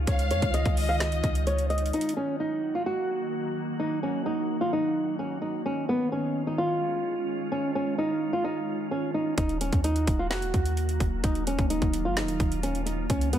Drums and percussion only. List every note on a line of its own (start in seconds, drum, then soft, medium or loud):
0.07 kick loud
0.07 closed hi-hat loud
0.19 closed hi-hat medium
0.31 closed hi-hat loud
0.42 kick medium
0.42 closed hi-hat medium
0.54 closed hi-hat medium
0.66 kick loud
0.66 closed hi-hat medium
0.77 open hi-hat medium
1.00 snare loud
1.00 closed hi-hat medium
1.12 closed hi-hat medium
1.24 kick loud
1.24 closed hi-hat medium
1.35 closed hi-hat medium
1.47 closed hi-hat medium
1.58 closed hi-hat medium
1.70 closed hi-hat soft
1.78 closed hi-hat medium
1.86 closed hi-hat medium
1.93 closed hi-hat medium
2.01 closed hi-hat medium
2.09 closed hi-hat medium
9.38 kick loud
9.38 closed hi-hat medium
9.49 closed hi-hat medium
9.61 closed hi-hat medium
9.73 kick medium
9.73 closed hi-hat medium
9.84 closed hi-hat medium
9.96 closed hi-hat medium
10.07 kick loud
10.07 closed hi-hat medium
10.31 snare loud
10.31 closed hi-hat medium
10.42 closed hi-hat medium
10.54 kick loud
10.54 closed hi-hat medium
10.66 closed hi-hat medium
10.77 closed hi-hat medium
10.89 closed hi-hat medium
11.00 kick medium
11.00 closed hi-hat medium
11.24 kick loud
11.24 closed hi-hat medium
11.35 closed hi-hat medium
11.47 closed hi-hat medium
11.59 kick medium
11.59 closed hi-hat medium
11.70 closed hi-hat medium
11.82 kick loud
11.82 closed hi-hat medium
11.93 closed hi-hat medium
12.17 snare loud
12.17 closed hi-hat medium
12.28 closed hi-hat medium
12.40 kick loud
12.40 closed hi-hat medium
12.52 closed hi-hat medium
12.63 closed hi-hat medium
12.75 closed hi-hat medium
12.87 closed hi-hat medium
13.10 kick loud
13.10 closed hi-hat medium
13.21 closed hi-hat medium
13.33 closed hi-hat medium